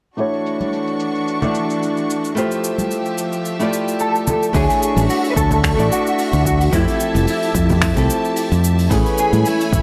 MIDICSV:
0, 0, Header, 1, 6, 480
1, 0, Start_track
1, 0, Tempo, 545455
1, 161, Time_signature, 4, 2, 24, 8
1, 8644, End_track
2, 0, Start_track
2, 0, Title_t, "String section"
2, 0, Program_c, 0, 48
2, 154, Note_on_c, 0, 66, 58
2, 155, Note_on_c, 0, 52, 64
2, 155, Note_on_c, 0, 62, 60
2, 155, Note_on_c, 0, 85, 70
2, 2058, Note_off_c, 0, 66, 0
2, 2059, Note_off_c, 0, 52, 0
2, 2059, Note_off_c, 0, 62, 0
2, 2059, Note_off_c, 0, 85, 0
2, 2081, Note_on_c, 0, 57, 65
2, 2081, Note_on_c, 0, 67, 67
2, 2085, Note_on_c, 0, 53, 69
2, 2085, Note_on_c, 0, 76, 77
2, 3982, Note_off_c, 0, 57, 0
2, 3982, Note_off_c, 0, 67, 0
2, 3984, Note_off_c, 0, 53, 0
2, 3984, Note_off_c, 0, 76, 0
2, 3999, Note_on_c, 0, 76, 65
2, 4003, Note_on_c, 0, 66, 66
2, 4004, Note_on_c, 0, 85, 79
2, 4005, Note_on_c, 0, 62, 64
2, 5903, Note_off_c, 0, 66, 0
2, 5904, Note_off_c, 0, 62, 0
2, 5904, Note_off_c, 0, 85, 0
2, 5918, Note_on_c, 0, 67, 70
2, 5920, Note_on_c, 0, 81, 80
2, 7805, Note_off_c, 0, 76, 0
2, 7820, Note_off_c, 0, 67, 0
2, 7821, Note_off_c, 0, 81, 0
2, 7845, Note_on_c, 0, 80, 66
2, 7846, Note_on_c, 0, 73, 62
2, 7847, Note_on_c, 0, 57, 72
2, 7847, Note_on_c, 0, 83, 85
2, 8644, Note_off_c, 0, 57, 0
2, 8644, Note_off_c, 0, 73, 0
2, 8644, Note_off_c, 0, 80, 0
2, 8644, Note_off_c, 0, 83, 0
2, 8644, End_track
3, 0, Start_track
3, 0, Title_t, "Clean electric guitar"
3, 0, Program_c, 1, 27
3, 3524, Note_on_c, 1, 69, 99
3, 4000, Note_off_c, 1, 69, 0
3, 4004, Note_on_c, 1, 68, 94
3, 4476, Note_off_c, 1, 68, 0
3, 4480, Note_on_c, 1, 66, 91
3, 4660, Note_off_c, 1, 66, 0
3, 4664, Note_on_c, 1, 71, 76
3, 4713, Note_off_c, 1, 71, 0
3, 4716, Note_on_c, 1, 69, 94
3, 5205, Note_off_c, 1, 69, 0
3, 5209, Note_on_c, 1, 66, 93
3, 5652, Note_off_c, 1, 66, 0
3, 5685, Note_on_c, 1, 66, 89
3, 5930, Note_off_c, 1, 66, 0
3, 5937, Note_on_c, 1, 64, 83
3, 6376, Note_off_c, 1, 64, 0
3, 6417, Note_on_c, 1, 64, 74
3, 7574, Note_off_c, 1, 64, 0
3, 8090, Note_on_c, 1, 68, 83
3, 8327, Note_on_c, 1, 64, 83
3, 8333, Note_off_c, 1, 68, 0
3, 8644, Note_off_c, 1, 64, 0
3, 8644, End_track
4, 0, Start_track
4, 0, Title_t, "Nylon-string guitar"
4, 0, Program_c, 2, 24
4, 148, Note_on_c, 2, 57, 85
4, 155, Note_on_c, 2, 62, 71
4, 164, Note_on_c, 2, 64, 75
4, 169, Note_on_c, 2, 66, 73
4, 179, Note_on_c, 2, 73, 94
4, 1214, Note_off_c, 2, 57, 0
4, 1218, Note_off_c, 2, 62, 0
4, 1222, Note_off_c, 2, 64, 0
4, 1225, Note_off_c, 2, 66, 0
4, 1230, Note_off_c, 2, 73, 0
4, 1243, Note_on_c, 2, 57, 77
4, 1250, Note_on_c, 2, 62, 74
4, 1257, Note_on_c, 2, 64, 71
4, 1265, Note_on_c, 2, 66, 70
4, 1273, Note_on_c, 2, 74, 85
4, 2050, Note_off_c, 2, 57, 0
4, 2054, Note_off_c, 2, 62, 0
4, 2057, Note_off_c, 2, 64, 0
4, 2062, Note_off_c, 2, 66, 0
4, 2065, Note_off_c, 2, 74, 0
4, 2066, Note_on_c, 2, 57, 85
4, 2076, Note_on_c, 2, 64, 80
4, 2083, Note_on_c, 2, 65, 83
4, 2093, Note_on_c, 2, 67, 80
4, 2097, Note_on_c, 2, 72, 98
4, 3133, Note_off_c, 2, 57, 0
4, 3138, Note_off_c, 2, 64, 0
4, 3142, Note_off_c, 2, 65, 0
4, 3147, Note_off_c, 2, 67, 0
4, 3149, Note_off_c, 2, 72, 0
4, 3163, Note_on_c, 2, 57, 87
4, 3168, Note_on_c, 2, 64, 73
4, 3178, Note_on_c, 2, 65, 71
4, 3187, Note_on_c, 2, 67, 79
4, 3192, Note_on_c, 2, 74, 89
4, 3970, Note_off_c, 2, 57, 0
4, 3973, Note_off_c, 2, 64, 0
4, 3978, Note_off_c, 2, 65, 0
4, 3982, Note_off_c, 2, 67, 0
4, 3985, Note_off_c, 2, 74, 0
4, 3986, Note_on_c, 2, 57, 93
4, 3993, Note_on_c, 2, 62, 83
4, 4001, Note_on_c, 2, 64, 81
4, 4009, Note_on_c, 2, 66, 81
4, 4017, Note_on_c, 2, 73, 96
4, 5053, Note_off_c, 2, 57, 0
4, 5057, Note_off_c, 2, 62, 0
4, 5061, Note_off_c, 2, 64, 0
4, 5065, Note_off_c, 2, 66, 0
4, 5069, Note_off_c, 2, 73, 0
4, 5071, Note_on_c, 2, 57, 84
4, 5078, Note_on_c, 2, 62, 79
4, 5086, Note_on_c, 2, 64, 74
4, 5096, Note_on_c, 2, 66, 74
4, 5101, Note_on_c, 2, 74, 90
4, 5885, Note_off_c, 2, 57, 0
4, 5888, Note_off_c, 2, 62, 0
4, 5892, Note_off_c, 2, 64, 0
4, 5897, Note_off_c, 2, 66, 0
4, 5900, Note_off_c, 2, 74, 0
4, 5906, Note_on_c, 2, 53, 93
4, 5916, Note_on_c, 2, 57, 87
4, 5924, Note_on_c, 2, 60, 78
4, 5930, Note_on_c, 2, 64, 84
4, 5940, Note_on_c, 2, 67, 99
4, 6973, Note_off_c, 2, 53, 0
4, 6978, Note_off_c, 2, 57, 0
4, 6982, Note_off_c, 2, 60, 0
4, 6986, Note_off_c, 2, 64, 0
4, 6990, Note_off_c, 2, 67, 0
4, 6991, Note_on_c, 2, 53, 88
4, 7001, Note_on_c, 2, 57, 75
4, 7008, Note_on_c, 2, 60, 80
4, 7016, Note_on_c, 2, 64, 79
4, 7024, Note_on_c, 2, 69, 93
4, 7804, Note_off_c, 2, 53, 0
4, 7810, Note_off_c, 2, 57, 0
4, 7813, Note_off_c, 2, 60, 0
4, 7817, Note_off_c, 2, 64, 0
4, 7821, Note_off_c, 2, 69, 0
4, 7828, Note_on_c, 2, 52, 92
4, 7835, Note_on_c, 2, 57, 88
4, 7842, Note_on_c, 2, 59, 86
4, 7851, Note_on_c, 2, 61, 83
4, 7859, Note_on_c, 2, 68, 107
4, 8644, Note_off_c, 2, 52, 0
4, 8644, Note_off_c, 2, 57, 0
4, 8644, Note_off_c, 2, 59, 0
4, 8644, Note_off_c, 2, 61, 0
4, 8644, Note_off_c, 2, 68, 0
4, 8644, End_track
5, 0, Start_track
5, 0, Title_t, "Fingered electric bass"
5, 0, Program_c, 3, 33
5, 3999, Note_on_c, 3, 38, 84
5, 4106, Note_off_c, 3, 38, 0
5, 4370, Note_on_c, 3, 33, 92
5, 4459, Note_off_c, 3, 33, 0
5, 4719, Note_on_c, 3, 38, 76
5, 5050, Note_off_c, 3, 38, 0
5, 5092, Note_on_c, 3, 33, 79
5, 5180, Note_off_c, 3, 33, 0
5, 5572, Note_on_c, 3, 38, 93
5, 5887, Note_off_c, 3, 38, 0
5, 5921, Note_on_c, 3, 41, 91
5, 6027, Note_off_c, 3, 41, 0
5, 6290, Note_on_c, 3, 29, 95
5, 6379, Note_off_c, 3, 29, 0
5, 6640, Note_on_c, 3, 41, 74
5, 6971, Note_off_c, 3, 41, 0
5, 7012, Note_on_c, 3, 36, 80
5, 7100, Note_off_c, 3, 36, 0
5, 7495, Note_on_c, 3, 41, 96
5, 7809, Note_off_c, 3, 41, 0
5, 7839, Note_on_c, 3, 33, 90
5, 7946, Note_off_c, 3, 33, 0
5, 8209, Note_on_c, 3, 45, 89
5, 8298, Note_off_c, 3, 45, 0
5, 8557, Note_on_c, 3, 33, 78
5, 8644, Note_off_c, 3, 33, 0
5, 8644, End_track
6, 0, Start_track
6, 0, Title_t, "Drums"
6, 155, Note_on_c, 9, 69, 53
6, 243, Note_off_c, 9, 69, 0
6, 295, Note_on_c, 9, 69, 32
6, 383, Note_off_c, 9, 69, 0
6, 407, Note_on_c, 9, 69, 67
6, 495, Note_off_c, 9, 69, 0
6, 534, Note_on_c, 9, 63, 52
6, 534, Note_on_c, 9, 69, 49
6, 622, Note_off_c, 9, 63, 0
6, 622, Note_off_c, 9, 69, 0
6, 641, Note_on_c, 9, 69, 47
6, 729, Note_off_c, 9, 69, 0
6, 768, Note_on_c, 9, 69, 35
6, 856, Note_off_c, 9, 69, 0
6, 878, Note_on_c, 9, 69, 65
6, 966, Note_off_c, 9, 69, 0
6, 1013, Note_on_c, 9, 69, 37
6, 1101, Note_off_c, 9, 69, 0
6, 1125, Note_on_c, 9, 69, 50
6, 1213, Note_off_c, 9, 69, 0
6, 1252, Note_on_c, 9, 64, 77
6, 1254, Note_on_c, 9, 69, 36
6, 1340, Note_off_c, 9, 64, 0
6, 1342, Note_off_c, 9, 69, 0
6, 1361, Note_on_c, 9, 69, 79
6, 1449, Note_off_c, 9, 69, 0
6, 1496, Note_on_c, 9, 69, 49
6, 1584, Note_off_c, 9, 69, 0
6, 1607, Note_on_c, 9, 69, 46
6, 1695, Note_off_c, 9, 69, 0
6, 1733, Note_on_c, 9, 69, 33
6, 1821, Note_off_c, 9, 69, 0
6, 1849, Note_on_c, 9, 69, 70
6, 1937, Note_off_c, 9, 69, 0
6, 1975, Note_on_c, 9, 69, 41
6, 2063, Note_off_c, 9, 69, 0
6, 2084, Note_on_c, 9, 69, 49
6, 2172, Note_off_c, 9, 69, 0
6, 2212, Note_on_c, 9, 69, 40
6, 2300, Note_off_c, 9, 69, 0
6, 2324, Note_on_c, 9, 69, 75
6, 2412, Note_off_c, 9, 69, 0
6, 2450, Note_on_c, 9, 63, 56
6, 2454, Note_on_c, 9, 69, 48
6, 2538, Note_off_c, 9, 63, 0
6, 2542, Note_off_c, 9, 69, 0
6, 2560, Note_on_c, 9, 69, 51
6, 2648, Note_off_c, 9, 69, 0
6, 2688, Note_on_c, 9, 69, 33
6, 2776, Note_off_c, 9, 69, 0
6, 2797, Note_on_c, 9, 69, 81
6, 2885, Note_off_c, 9, 69, 0
6, 2927, Note_on_c, 9, 69, 42
6, 3015, Note_off_c, 9, 69, 0
6, 3038, Note_on_c, 9, 69, 54
6, 3126, Note_off_c, 9, 69, 0
6, 3170, Note_on_c, 9, 69, 43
6, 3258, Note_off_c, 9, 69, 0
6, 3283, Note_on_c, 9, 69, 75
6, 3371, Note_off_c, 9, 69, 0
6, 3415, Note_on_c, 9, 69, 45
6, 3503, Note_off_c, 9, 69, 0
6, 3515, Note_on_c, 9, 69, 53
6, 3603, Note_off_c, 9, 69, 0
6, 3656, Note_on_c, 9, 69, 38
6, 3744, Note_off_c, 9, 69, 0
6, 3758, Note_on_c, 9, 69, 82
6, 3761, Note_on_c, 9, 64, 81
6, 3846, Note_off_c, 9, 69, 0
6, 3849, Note_off_c, 9, 64, 0
6, 3896, Note_on_c, 9, 69, 48
6, 3984, Note_off_c, 9, 69, 0
6, 3999, Note_on_c, 9, 36, 102
6, 3999, Note_on_c, 9, 69, 50
6, 4002, Note_on_c, 9, 46, 71
6, 4087, Note_off_c, 9, 36, 0
6, 4087, Note_off_c, 9, 69, 0
6, 4090, Note_off_c, 9, 46, 0
6, 4133, Note_on_c, 9, 46, 49
6, 4136, Note_on_c, 9, 69, 37
6, 4221, Note_off_c, 9, 46, 0
6, 4224, Note_off_c, 9, 69, 0
6, 4247, Note_on_c, 9, 69, 78
6, 4335, Note_off_c, 9, 69, 0
6, 4368, Note_on_c, 9, 63, 61
6, 4373, Note_on_c, 9, 46, 48
6, 4376, Note_on_c, 9, 69, 48
6, 4456, Note_off_c, 9, 63, 0
6, 4461, Note_off_c, 9, 46, 0
6, 4464, Note_off_c, 9, 69, 0
6, 4481, Note_on_c, 9, 46, 77
6, 4485, Note_on_c, 9, 69, 49
6, 4569, Note_off_c, 9, 46, 0
6, 4573, Note_off_c, 9, 69, 0
6, 4611, Note_on_c, 9, 46, 55
6, 4617, Note_on_c, 9, 69, 35
6, 4699, Note_off_c, 9, 46, 0
6, 4705, Note_off_c, 9, 69, 0
6, 4720, Note_on_c, 9, 36, 96
6, 4726, Note_on_c, 9, 69, 81
6, 4808, Note_off_c, 9, 36, 0
6, 4814, Note_off_c, 9, 69, 0
6, 4848, Note_on_c, 9, 64, 84
6, 4851, Note_on_c, 9, 69, 46
6, 4855, Note_on_c, 9, 46, 36
6, 4936, Note_off_c, 9, 64, 0
6, 4939, Note_off_c, 9, 69, 0
6, 4943, Note_off_c, 9, 46, 0
6, 4960, Note_on_c, 9, 36, 97
6, 4960, Note_on_c, 9, 46, 71
6, 4963, Note_on_c, 9, 26, 65
6, 4965, Note_on_c, 9, 69, 52
6, 5048, Note_off_c, 9, 36, 0
6, 5048, Note_off_c, 9, 46, 0
6, 5051, Note_off_c, 9, 26, 0
6, 5053, Note_off_c, 9, 69, 0
6, 5096, Note_on_c, 9, 46, 47
6, 5097, Note_on_c, 9, 69, 41
6, 5184, Note_off_c, 9, 46, 0
6, 5185, Note_off_c, 9, 69, 0
6, 5209, Note_on_c, 9, 69, 81
6, 5297, Note_off_c, 9, 69, 0
6, 5340, Note_on_c, 9, 69, 50
6, 5428, Note_off_c, 9, 69, 0
6, 5443, Note_on_c, 9, 69, 53
6, 5444, Note_on_c, 9, 46, 78
6, 5531, Note_off_c, 9, 69, 0
6, 5532, Note_off_c, 9, 46, 0
6, 5571, Note_on_c, 9, 69, 38
6, 5575, Note_on_c, 9, 46, 47
6, 5659, Note_off_c, 9, 69, 0
6, 5663, Note_off_c, 9, 46, 0
6, 5680, Note_on_c, 9, 36, 58
6, 5689, Note_on_c, 9, 69, 81
6, 5768, Note_off_c, 9, 36, 0
6, 5777, Note_off_c, 9, 69, 0
6, 5812, Note_on_c, 9, 46, 56
6, 5817, Note_on_c, 9, 69, 41
6, 5900, Note_off_c, 9, 46, 0
6, 5905, Note_off_c, 9, 69, 0
6, 5920, Note_on_c, 9, 36, 110
6, 5920, Note_on_c, 9, 46, 78
6, 5922, Note_on_c, 9, 69, 60
6, 6008, Note_off_c, 9, 36, 0
6, 6008, Note_off_c, 9, 46, 0
6, 6010, Note_off_c, 9, 69, 0
6, 6052, Note_on_c, 9, 46, 46
6, 6056, Note_on_c, 9, 69, 40
6, 6140, Note_off_c, 9, 46, 0
6, 6144, Note_off_c, 9, 69, 0
6, 6161, Note_on_c, 9, 69, 70
6, 6249, Note_off_c, 9, 69, 0
6, 6285, Note_on_c, 9, 46, 48
6, 6293, Note_on_c, 9, 63, 61
6, 6297, Note_on_c, 9, 69, 48
6, 6373, Note_off_c, 9, 46, 0
6, 6381, Note_off_c, 9, 63, 0
6, 6385, Note_off_c, 9, 69, 0
6, 6399, Note_on_c, 9, 46, 67
6, 6404, Note_on_c, 9, 69, 52
6, 6487, Note_off_c, 9, 46, 0
6, 6492, Note_off_c, 9, 69, 0
6, 6532, Note_on_c, 9, 46, 53
6, 6537, Note_on_c, 9, 69, 36
6, 6620, Note_off_c, 9, 46, 0
6, 6625, Note_off_c, 9, 69, 0
6, 6641, Note_on_c, 9, 36, 99
6, 6644, Note_on_c, 9, 69, 69
6, 6729, Note_off_c, 9, 36, 0
6, 6732, Note_off_c, 9, 69, 0
6, 6768, Note_on_c, 9, 46, 46
6, 6771, Note_on_c, 9, 69, 42
6, 6777, Note_on_c, 9, 64, 84
6, 6856, Note_off_c, 9, 46, 0
6, 6859, Note_off_c, 9, 69, 0
6, 6865, Note_off_c, 9, 64, 0
6, 6878, Note_on_c, 9, 26, 82
6, 6880, Note_on_c, 9, 36, 114
6, 6881, Note_on_c, 9, 46, 78
6, 6890, Note_on_c, 9, 69, 53
6, 6966, Note_off_c, 9, 26, 0
6, 6968, Note_off_c, 9, 36, 0
6, 6969, Note_off_c, 9, 46, 0
6, 6978, Note_off_c, 9, 69, 0
6, 7011, Note_on_c, 9, 46, 43
6, 7011, Note_on_c, 9, 69, 42
6, 7099, Note_off_c, 9, 46, 0
6, 7099, Note_off_c, 9, 69, 0
6, 7128, Note_on_c, 9, 69, 82
6, 7216, Note_off_c, 9, 69, 0
6, 7258, Note_on_c, 9, 69, 47
6, 7346, Note_off_c, 9, 69, 0
6, 7357, Note_on_c, 9, 46, 76
6, 7363, Note_on_c, 9, 69, 66
6, 7445, Note_off_c, 9, 46, 0
6, 7451, Note_off_c, 9, 69, 0
6, 7495, Note_on_c, 9, 46, 48
6, 7497, Note_on_c, 9, 69, 38
6, 7583, Note_off_c, 9, 46, 0
6, 7585, Note_off_c, 9, 69, 0
6, 7604, Note_on_c, 9, 69, 82
6, 7692, Note_off_c, 9, 69, 0
6, 7733, Note_on_c, 9, 69, 45
6, 7734, Note_on_c, 9, 46, 56
6, 7821, Note_off_c, 9, 69, 0
6, 7822, Note_off_c, 9, 46, 0
6, 7839, Note_on_c, 9, 36, 120
6, 7840, Note_on_c, 9, 46, 74
6, 7842, Note_on_c, 9, 69, 58
6, 7927, Note_off_c, 9, 36, 0
6, 7928, Note_off_c, 9, 46, 0
6, 7930, Note_off_c, 9, 69, 0
6, 7971, Note_on_c, 9, 46, 42
6, 7973, Note_on_c, 9, 69, 40
6, 8059, Note_off_c, 9, 46, 0
6, 8061, Note_off_c, 9, 69, 0
6, 8077, Note_on_c, 9, 69, 85
6, 8165, Note_off_c, 9, 69, 0
6, 8211, Note_on_c, 9, 69, 52
6, 8215, Note_on_c, 9, 46, 46
6, 8218, Note_on_c, 9, 63, 65
6, 8299, Note_off_c, 9, 69, 0
6, 8303, Note_off_c, 9, 46, 0
6, 8306, Note_off_c, 9, 63, 0
6, 8319, Note_on_c, 9, 69, 55
6, 8325, Note_on_c, 9, 46, 65
6, 8407, Note_off_c, 9, 69, 0
6, 8413, Note_off_c, 9, 46, 0
6, 8454, Note_on_c, 9, 46, 50
6, 8456, Note_on_c, 9, 69, 43
6, 8542, Note_off_c, 9, 46, 0
6, 8544, Note_off_c, 9, 69, 0
6, 8558, Note_on_c, 9, 36, 106
6, 8565, Note_on_c, 9, 69, 83
6, 8644, Note_off_c, 9, 36, 0
6, 8644, Note_off_c, 9, 69, 0
6, 8644, End_track
0, 0, End_of_file